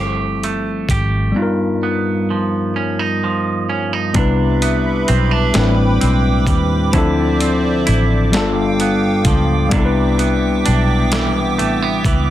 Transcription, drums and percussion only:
0.43 closed hi-hat soft
0.89 kick medium
0.89 closed hi-hat medium
4.14 kick loud
4.14 closed hi-hat medium
4.62 closed hi-hat medium
5.08 closed hi-hat medium
5.54 snare loud
5.54 closed hi-hat medium
6.01 closed hi-hat medium
6.47 kick medium
6.47 closed hi-hat medium
6.93 kick loud
6.93 closed hi-hat medium
7.41 closed hi-hat medium
7.87 closed hi-hat medium
8.33 snare loud
8.33 closed hi-hat medium
8.80 closed hi-hat medium
9.25 kick medium
9.25 closed hi-hat medium
9.71 kick loud
9.71 closed hi-hat medium
10.19 closed hi-hat medium
10.66 closed hi-hat medium
11.12 snare loud
11.12 closed hi-hat medium
11.59 closed hi-hat medium
12.04 kick loud
12.04 closed hi-hat medium

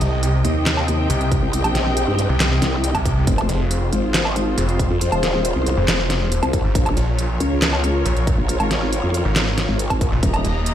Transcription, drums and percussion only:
0.01 closed hi-hat medium
0.23 closed hi-hat medium
0.45 closed hi-hat medium
0.66 snare loud
0.66 clap medium
0.66 closed hi-hat medium
0.77 low woodblock medium
0.88 closed hi-hat medium
1.10 closed hi-hat medium
1.21 closed hi-hat soft
1.32 kick loud
1.32 closed hi-hat medium
1.53 closed hi-hat medium
1.64 closed hi-hat soft
1.64 low woodblock medium
1.75 snare medium
1.75 closed hi-hat medium
1.97 closed hi-hat medium
2.19 closed hi-hat medium
2.40 snare loud
2.40 clap medium
2.40 closed hi-hat medium
2.62 snare medium
2.62 closed hi-hat medium
2.84 closed hi-hat medium
2.95 kick medium
2.95 closed hi-hat soft
2.95 low woodblock medium
3.05 kick loud
3.05 closed hi-hat medium
3.27 kick loud
3.27 closed hi-hat medium
3.38 closed hi-hat soft
3.38 low woodblock medium
3.49 closed hi-hat medium
3.71 closed hi-hat medium
3.93 closed hi-hat medium
4.14 snare loud
4.14 clap loud
4.14 closed hi-hat medium
4.25 low woodblock medium
4.36 closed hi-hat medium
4.58 closed hi-hat medium
4.69 closed hi-hat soft
4.79 kick loud
4.79 closed hi-hat medium
5.01 closed hi-hat medium
5.12 closed hi-hat soft
5.12 low woodblock medium
5.23 snare medium
5.23 closed hi-hat medium
5.45 closed hi-hat medium
5.66 closed hi-hat medium
5.88 snare loud
5.88 clap loud
5.88 closed hi-hat medium
6.10 snare medium
6.10 closed hi-hat medium
6.32 closed hi-hat medium
6.43 closed hi-hat soft
6.43 low woodblock medium
6.53 kick loud
6.53 closed hi-hat medium
6.75 kick loud
6.75 closed hi-hat medium
6.86 closed hi-hat soft
6.86 low woodblock medium
6.97 closed hi-hat medium
7.19 closed hi-hat medium
7.40 closed hi-hat medium
7.62 snare loud
7.62 clap medium
7.62 closed hi-hat medium
7.73 low woodblock medium
7.84 closed hi-hat medium
8.06 closed hi-hat medium
8.17 closed hi-hat soft
8.27 kick loud
8.27 closed hi-hat medium
8.49 closed hi-hat medium
8.60 closed hi-hat soft
8.60 low woodblock medium
8.71 snare medium
8.71 closed hi-hat medium
8.93 closed hi-hat medium
9.14 closed hi-hat medium
9.36 snare loud
9.36 clap medium
9.36 closed hi-hat medium
9.58 snare medium
9.58 closed hi-hat medium
9.79 closed hi-hat medium
9.90 kick medium
9.90 closed hi-hat soft
9.90 low woodblock medium
10.01 kick loud
10.01 closed hi-hat medium
10.23 kick loud
10.23 closed hi-hat medium
10.34 closed hi-hat soft
10.34 low woodblock medium
10.45 closed hi-hat medium
10.66 closed hi-hat medium

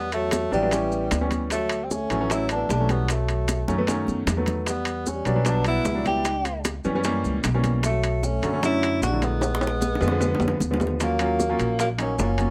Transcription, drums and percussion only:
0.12 high bongo soft
0.12 high conga soft
0.12 high timbale medium
0.12 maracas soft
0.31 high bongo medium
0.31 high conga medium
0.31 high timbale medium
0.31 maracas medium
0.52 high conga soft
0.52 maracas soft
0.71 high bongo medium
0.71 high conga soft
0.71 high timbale medium
0.71 maracas medium
0.92 high bongo soft
0.92 high conga soft
0.92 maracas soft
1.11 high bongo medium
1.11 low bongo medium
1.11 high conga medium
1.11 high timbale medium
1.11 maracas medium
1.31 high bongo soft
1.31 high conga medium
1.31 high timbale medium
1.31 maracas soft
1.50 high bongo medium
1.50 high conga soft
1.50 high timbale medium
1.50 maracas medium
1.69 high conga soft
1.69 high timbale medium
1.69 maracas soft
1.91 high bongo medium
1.91 high conga medium
1.91 maracas medium
2.10 high bongo soft
2.10 high conga soft
2.10 high timbale medium
2.10 maracas soft
2.30 high bongo medium
2.30 high conga soft
2.30 high timbale medium
2.30 maracas medium
2.49 high bongo soft
2.49 high conga soft
2.49 high timbale medium
2.49 maracas soft
2.69 high bongo medium
2.69 low bongo medium
2.69 high conga soft
2.69 low timbale medium
2.69 maracas medium
2.89 high bongo soft
2.89 high conga medium
2.89 high timbale medium
2.89 maracas soft
3.08 high bongo medium
3.08 high conga soft
3.08 high timbale medium
3.08 maracas medium
3.28 high bongo soft
3.28 high conga soft
3.28 high timbale medium
3.28 maracas soft
3.48 high bongo medium
3.48 high conga medium
3.48 high timbale medium
3.48 maracas medium
3.68 high conga medium
3.68 maracas soft
3.87 high bongo medium
3.87 high conga medium
3.87 high timbale medium
3.87 maracas medium
4.07 high bongo soft
4.07 high conga medium
4.07 maracas soft
4.27 high bongo medium
4.27 low bongo medium
4.27 low conga medium
4.27 high timbale medium
4.27 low timbale medium
4.27 maracas medium
4.46 high bongo soft
4.46 low conga medium
4.46 high timbale medium
4.46 maracas soft
4.66 high bongo medium
4.66 high conga soft
4.66 high timbale medium
4.66 maracas medium
4.85 high conga soft
4.85 high timbale medium
4.85 maracas soft
5.06 high bongo medium
5.06 high conga medium
5.06 maracas medium
5.25 high bongo soft
5.25 high conga soft
5.25 high timbale medium
5.25 maracas soft
5.45 high bongo medium
5.45 high conga soft
5.45 high timbale medium
5.45 maracas medium
5.64 high bongo soft
5.64 high conga soft
5.64 high timbale medium
5.64 maracas soft
5.85 high bongo medium
5.85 low bongo medium
5.85 high conga soft
5.85 low timbale medium
5.85 maracas medium
6.05 high bongo soft
6.05 high conga medium
6.05 high timbale medium
6.05 maracas soft
6.25 high bongo medium
6.25 high conga soft
6.25 high timbale medium
6.25 maracas medium
6.45 high bongo soft
6.45 high conga soft
6.45 high timbale medium
6.45 maracas soft
6.65 high bongo medium
6.65 high conga medium
6.65 high timbale medium
6.65 maracas medium
6.84 high conga soft
6.84 maracas soft
7.04 high bongo medium
7.04 high conga soft
7.04 high timbale medium
7.04 maracas medium
7.25 high bongo soft
7.25 high conga soft
7.25 maracas soft
7.44 high bongo medium
7.44 low bongo medium
7.44 high conga medium
7.44 high timbale medium
7.44 maracas medium
7.64 high bongo soft
7.64 high conga medium
7.64 high timbale medium
7.64 maracas soft
7.83 high bongo medium
7.83 high conga soft
7.83 high timbale medium
7.83 maracas medium
8.04 high conga soft
8.04 high timbale medium
8.04 maracas soft
8.23 high bongo medium
8.23 high conga medium
8.23 maracas medium
8.43 high bongo soft
8.43 high conga soft
8.43 high timbale medium
8.43 maracas soft
8.63 high bongo medium
8.63 high conga soft
8.63 high timbale medium
8.63 maracas medium
8.83 high bongo soft
8.83 high conga soft
8.83 high timbale medium
8.83 maracas soft
9.02 high bongo medium
9.02 low bongo medium
9.02 high conga soft
9.02 low timbale medium
9.02 maracas medium
9.22 high bongo soft
9.22 high conga medium
9.22 high timbale medium
9.22 maracas soft
9.41 high bongo medium
9.41 high timbale medium
9.41 maracas medium
9.55 high bongo medium
9.61 high conga soft
9.61 high timbale medium
9.61 maracas soft
9.67 high bongo medium
9.81 high conga medium
9.81 low timbale medium
9.81 maracas medium
9.95 low bongo medium
10.01 high conga soft
10.01 low timbale medium
10.01 maracas soft
10.08 high bongo medium
10.21 high conga soft
10.21 low timbale medium
10.21 maracas medium
10.35 low bongo medium
10.40 high conga soft
10.40 low timbale medium
10.40 maracas soft
10.48 low bongo medium
10.60 low bongo medium
10.60 high conga medium
10.60 maracas medium
10.74 low bongo medium
10.80 high conga medium
10.80 low timbale medium
10.80 maracas soft
10.87 low bongo medium
11.00 high bongo medium
11.00 high conga soft
11.00 high timbale medium
11.00 maracas medium
11.19 high conga soft
11.19 high timbale medium
11.19 maracas soft
11.40 high bongo medium
11.40 high conga medium
11.40 maracas medium
11.59 high bongo soft
11.59 high conga soft
11.59 high timbale medium
11.59 maracas soft
11.79 high bongo medium
11.79 high conga soft
11.79 high timbale medium
11.79 maracas medium
11.98 high bongo soft
11.98 high conga soft
11.98 high timbale medium
11.98 maracas soft
12.19 high bongo medium
12.19 low bongo medium
12.19 high conga soft
12.19 maracas medium
12.38 high bongo soft
12.38 high conga medium
12.38 high timbale medium
12.38 maracas soft

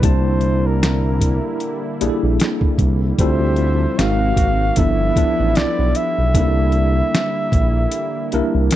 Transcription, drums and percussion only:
0.03 kick loud
0.03 closed hi-hat medium
0.41 closed hi-hat medium
0.83 snare loud
0.83 closed hi-hat medium
1.21 kick medium
1.21 closed hi-hat medium
1.60 closed hi-hat medium
2.01 closed hi-hat medium
2.40 snare loud
2.40 closed hi-hat medium
2.61 kick medium
2.78 kick medium
2.78 closed hi-hat medium
3.18 kick loud
3.18 closed hi-hat medium
3.56 closed hi-hat medium
3.99 snare loud
3.99 closed hi-hat medium
4.36 kick medium
4.36 closed hi-hat medium
4.76 kick medium
4.76 closed hi-hat medium
5.16 kick medium
5.16 closed hi-hat medium
5.55 snare loud
5.55 closed hi-hat medium
5.95 closed hi-hat medium
6.34 kick loud
6.34 closed hi-hat medium
6.72 closed hi-hat medium
7.15 snare loud
7.15 closed hi-hat medium
7.52 kick medium
7.52 closed hi-hat medium
7.91 closed hi-hat medium
8.32 closed hi-hat medium
8.71 snare loud
8.71 closed hi-hat medium

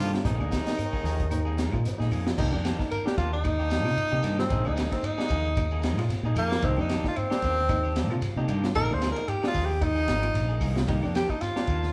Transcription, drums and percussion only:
0.13 snare medium
0.13 closed hi-hat medium
0.13 shekere soft
0.25 kick loud
0.25 snare soft
0.25 closed hi-hat medium
0.25 shekere medium
0.40 claves medium
0.40 shekere soft
0.52 kick medium
0.52 snare medium
0.52 closed hi-hat medium
0.52 shekere medium
0.67 snare medium
0.67 closed hi-hat medium
0.67 shekere soft
0.78 closed hi-hat medium
0.78 claves medium
0.78 shekere medium
0.93 kick medium
0.93 shekere soft
1.05 open hi-hat medium
1.05 shekere medium
1.19 kick medium
1.19 closed hi-hat medium
1.19 shekere soft
1.31 closed hi-hat medium
1.31 claves medium
1.31 shekere medium
1.46 shekere soft
1.58 snare medium
1.58 closed hi-hat medium
1.58 shekere medium
1.72 kick medium
1.72 claves medium
1.72 shekere soft
1.85 snare soft
1.85 closed hi-hat medium
1.85 shekere medium
2.00 snare soft
2.00 shekere soft
2.11 open hi-hat medium
2.11 claves medium
2.11 shekere medium
2.27 snare medium
2.27 shekere soft
2.38 kick loud
2.38 crash loud
2.38 shekere medium
2.53 claves medium
2.53 shekere soft
2.65 snare medium
2.65 ride bell medium
2.65 shekere medium
2.79 kick medium
2.79 snare soft
2.79 shekere soft
2.90 ride bell medium
2.90 claves medium
2.90 shekere medium
3.06 snare medium
3.06 shekere soft
3.18 kick medium
3.18 ride bell medium
3.18 shekere medium
3.33 shekere soft
3.44 kick medium
3.44 ride bell medium
3.44 claves medium
3.44 shekere loud
3.59 shekere soft
3.70 snare medium
3.70 ride bell medium
3.70 shekere medium
3.85 snare soft
3.85 claves medium
3.85 shekere soft
3.97 ride bell medium
3.97 shekere medium
4.11 shekere soft
4.22 snare soft
4.22 ride bell medium
4.22 claves medium
4.22 shekere medium
4.37 snare medium
4.37 shekere soft
4.50 kick loud
4.50 ride bell medium
4.50 shekere medium
4.65 claves medium
4.65 shekere soft
4.76 snare medium
4.76 ride bell medium
4.76 shekere medium
4.90 kick medium
4.90 snare soft
4.90 ride bell medium
4.90 shekere soft
5.03 ride bell medium
5.03 claves medium
5.03 shekere medium
5.18 snare medium
5.18 shekere soft
5.29 kick medium
5.29 ride bell medium
5.29 shekere medium
5.44 shekere soft
5.56 kick medium
5.56 ride bell medium
5.56 claves medium
5.56 shekere loud
5.71 shekere soft
5.82 snare medium
5.82 ride bell medium
5.82 shekere medium
5.97 snare soft
5.97 ride bell medium
5.97 claves medium
5.97 shekere soft
6.09 snare soft
6.09 ride bell medium
6.09 shekere loud
6.25 shekere soft
6.36 ride bell medium
6.36 claves medium
6.36 shekere medium
6.51 snare medium
6.51 shekere soft
6.62 kick loud
6.62 ride bell medium
6.62 shekere medium
6.77 claves medium
6.77 shekere soft
6.89 snare medium
6.89 ride bell medium
6.89 shekere medium
7.04 kick medium
7.04 snare soft
7.04 shekere soft
7.16 ride bell medium
7.16 claves medium
7.16 shekere loud
7.31 snare medium
7.31 shekere soft
7.42 kick medium
7.42 ride bell medium
7.42 shekere medium
7.57 shekere soft
7.69 kick medium
7.69 ride bell medium
7.69 claves medium
7.69 shekere loud
7.84 shekere soft
7.95 snare medium
7.95 ride bell medium
7.95 shekere medium
8.10 claves medium
8.10 shekere soft
8.22 snare soft
8.22 ride bell medium
8.22 shekere loud
8.37 shekere soft
8.48 ride bell medium
8.48 claves medium
8.48 shekere medium
8.63 snare medium
8.63 shekere soft
8.75 kick loud
8.75 ride bell medium
8.75 shekere loud
8.90 claves medium
8.90 shekere soft
9.02 snare medium
9.02 ride bell medium
9.02 shekere medium
9.16 ride bell medium
9.16 shekere soft
9.28 ride bell medium
9.28 claves medium
9.28 shekere loud
9.43 snare medium
9.43 shekere soft
9.54 kick medium
9.54 snare soft
9.54 open hi-hat medium
9.54 shekere medium
9.69 shekere soft
9.81 kick medium
9.81 ride bell medium
9.81 claves medium
9.81 shekere medium
9.96 shekere soft
10.08 snare medium
10.08 ride bell medium
10.08 shekere medium
10.23 ride bell medium
10.23 claves medium
10.23 shekere soft
10.34 snare soft
10.34 ride bell medium
10.34 shekere loud
10.49 shekere soft
10.61 kick medium
10.61 open hi-hat medium
10.61 claves medium
10.61 shekere medium
10.75 snare medium
10.75 shekere soft
10.87 kick loud
10.87 ride bell medium
10.87 shekere loud
11.03 claves medium
11.03 shekere soft
11.15 snare medium
11.15 ride bell medium
11.15 shekere medium
11.29 kick medium
11.29 shekere soft
11.41 snare soft
11.41 ride bell medium
11.41 claves medium
11.41 shekere medium
11.56 snare medium
11.56 shekere soft
11.67 kick medium
11.67 ride bell soft
11.67 shekere medium
11.83 snare soft
11.83 shekere soft

